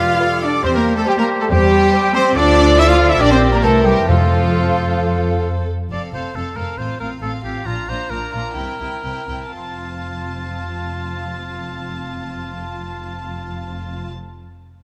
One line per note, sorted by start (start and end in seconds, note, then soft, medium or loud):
0.00 0.11 F2 medium
0.00 0.38 F2 medium
0.00 0.63 G3 medium
0.00 0.41 F4 medium
0.00 0.41 F4 loud
0.00 0.18 B4 medium
0.00 0.62 D5 medium
0.00 0.41 F5 medium
0.00 0.42 F5 medium
0.00 0.40 F6 medium
0.19 0.65 A4 medium
0.19 0.53 B4 medium
0.41 0.64 D4 medium
0.41 0.50 D4 medium
0.41 0.63 D5 medium
0.41 0.65 D5 medium
0.41 0.63 D6 medium
0.63 0.98 E2 medium
0.63 1.07 G3 medium
0.63 0.68 C4 medium
0.63 0.75 C4 loud
0.63 0.78 G4 medium
0.63 1.05 G4 medium
0.63 1.06 C5 medium
0.63 0.79 C5 medium
0.63 0.69 C5 medium
0.63 0.75 C5 medium
0.63 0.69 C6 medium
0.74 0.96 A#3 medium
0.74 0.97 A#3 loud
0.74 0.96 A#4 medium
0.74 0.85 A#4 medium
0.74 0.81 A#5 medium
0.96 1.07 A3 medium
0.96 1.08 A3 medium
0.96 1.07 A4 medium
0.96 1.01 A4 medium
0.96 1.10 A5 medium
1.06 1.18 G3 medium
1.06 1.12 G3 loud
1.06 1.50 G3 medium
1.06 1.49 G4 medium
1.06 1.18 G4 medium
1.06 1.13 G4 medium
1.06 1.50 C5 medium
1.06 1.40 C5 medium
1.06 1.18 G5 medium
1.18 1.40 A#3 medium
1.18 1.27 A#3 medium
1.18 1.26 A#4 medium
1.18 1.28 A#4 medium
1.18 1.25 A#5 medium
1.40 1.51 A3 medium
1.40 1.45 A4 medium
1.40 1.50 A5 medium
1.49 1.84 E2 loud
1.49 2.15 G3 loud
1.49 2.34 G3 medium
1.49 1.65 G4 medium
1.49 2.37 G4 medium
1.49 2.13 G4 loud
1.49 2.13 G4 medium
1.49 1.65 C5 medium
1.49 2.39 C5 medium
1.49 2.16 G5 loud
1.94 2.25 C5 medium
2.14 2.36 C4 medium
2.14 2.36 C4 loud
2.14 2.24 C5 loud
2.14 2.35 C5 medium
2.14 2.35 C6 loud
2.34 3.17 D2 loud
2.34 3.23 F3 medium
2.34 2.77 D4 loud
2.34 2.79 D4 loud
2.34 3.16 F4 medium
2.34 3.17 F4 medium
2.34 3.21 A4 medium
2.34 3.16 D5 medium
2.34 2.78 D5 loud
2.34 3.21 D5 medium
2.34 2.77 D6 loud
2.77 2.89 E4 loud
2.77 2.89 E5 loud
2.77 2.90 E6 loud
2.88 3.10 F4 loud
2.88 3.11 F4 loud
2.88 3.10 F5 medium
2.88 2.97 F5 medium
2.88 3.09 F6 loud
3.09 3.21 E4 medium
3.09 3.21 E4 loud
3.09 3.21 E5 medium
3.09 3.14 E6 medium
3.20 3.63 A#1 medium
3.20 3.65 G3 medium
3.20 3.31 D4 loud
3.20 3.63 G4 medium
3.20 3.64 G4 medium
3.20 3.62 A#4 medium
3.20 3.62 D5 medium
3.20 3.31 D5 loud
3.20 3.64 D5 medium
3.20 3.25 D6 loud
3.31 3.53 C4 medium
3.31 3.53 C4 loud
3.31 3.39 C5 medium
3.31 3.41 C5 medium
3.31 3.37 C6 medium
3.52 3.57 A#3 medium
3.52 3.58 A#3 loud
3.52 3.57 A#4 medium
3.52 3.64 A#4 medium
3.52 3.57 A#5 medium
3.62 4.08 C2 medium
3.62 4.07 E3 medium
3.62 3.85 A3 loud
3.62 3.85 A3 medium
3.62 3.71 A4 medium
3.62 3.85 A4 medium
3.62 4.08 A#4 medium
3.62 4.11 A#4 medium
3.62 4.08 A#4 medium
3.62 4.07 C5 medium
3.62 4.07 E5 medium
3.62 3.83 A5 medium
3.84 4.08 G3 medium
3.84 4.09 G3 medium
3.84 4.08 G4 medium
3.84 4.09 G4 medium
3.84 3.90 G5 medium
4.07 5.67 F2 medium
4.07 4.74 F2 loud
4.07 5.42 F3 medium
4.07 5.65 F3 medium
4.07 5.45 F3 medium
4.07 5.42 F4 medium
4.07 5.43 F4 medium
4.07 5.65 A4 medium
4.07 5.67 A4 medium
4.07 5.68 A4 medium
4.07 5.65 C5 medium
4.07 5.41 F5 medium
4.07 5.68 F5 medium
5.91 5.99 F1 soft
5.91 6.00 F2 soft
5.91 6.13 C4 soft
5.91 6.12 A4 soft
5.91 6.02 D5 medium
5.91 6.13 F5 soft
6.13 6.21 F1 soft
6.13 6.22 F2 soft
6.13 6.35 C4 soft
6.13 6.34 A4 soft
6.13 6.37 C5 medium
6.13 6.36 F5 soft
6.35 6.44 F1 soft
6.35 6.43 F2 soft
6.35 6.57 C4 soft
6.35 6.56 A4 soft
6.35 6.58 A4 medium
6.35 6.57 F5 soft
6.57 6.65 F1 soft
6.57 6.66 F2 soft
6.57 6.78 C4 soft
6.57 6.78 A4 soft
6.57 6.80 A#4 medium
6.57 6.79 F5 soft
6.78 6.87 A1 soft
6.78 6.87 A2 soft
6.78 7.00 C4 soft
6.78 6.98 F4 soft
6.78 7.00 C5 medium
6.78 7.00 F5 soft
7.00 7.08 A1 soft
7.00 7.08 A2 soft
7.00 7.22 C4 soft
7.00 7.21 F4 soft
7.00 7.10 A#4 medium
7.00 7.22 F5 soft
7.22 7.30 A1 soft
7.22 7.31 A2 soft
7.22 7.43 C4 soft
7.22 7.42 F4 soft
7.22 7.32 A4 medium
7.22 7.43 F5 soft
7.43 7.52 A1 soft
7.43 7.53 A2 soft
7.43 7.66 C4 soft
7.43 7.64 F4 soft
7.43 7.68 G4 medium
7.43 7.66 F5 soft
7.65 7.74 A#1 soft
7.65 7.75 A#2 soft
7.65 7.87 D4 soft
7.65 7.87 F4 soft
7.65 7.91 F4 medium
7.65 7.87 A#5 soft
7.88 7.96 A#1 soft
7.88 7.97 A#2 soft
7.88 8.08 D4 soft
7.88 8.09 F4 soft
7.88 8.12 C5 medium
7.88 8.10 A#5 soft
8.09 8.18 A#1 soft
8.09 8.19 A#2 soft
8.09 8.32 D4 soft
8.09 8.31 F4 soft
8.09 9.53 A#4 medium
8.09 8.34 A#5 soft
8.33 8.41 A#1 soft
8.33 8.42 A#2 soft
8.33 8.56 D4 soft
8.33 8.56 F4 soft
8.33 8.57 A#5 soft
8.55 8.64 C2 soft
8.55 8.65 C3 soft
8.55 8.78 C4 soft
8.55 8.79 E4 soft
8.55 8.79 G5 soft
8.79 8.87 C2 soft
8.79 8.89 C3 soft
8.79 9.02 C4 soft
8.79 9.03 E4 soft
8.79 9.02 G5 soft
9.03 9.12 C2 soft
9.03 9.13 C3 soft
9.03 9.26 C4 soft
9.03 9.29 E4 soft
9.03 9.28 G5 soft
9.28 9.37 C2 soft
9.28 9.38 C3 soft
9.28 9.51 C4 soft
9.28 9.54 E4 soft
9.28 9.54 G5 soft
9.53 14.10 F1 soft
9.53 14.10 F2 soft
9.53 14.10 C4 soft
9.53 14.10 F4 soft
9.53 14.10 A5 soft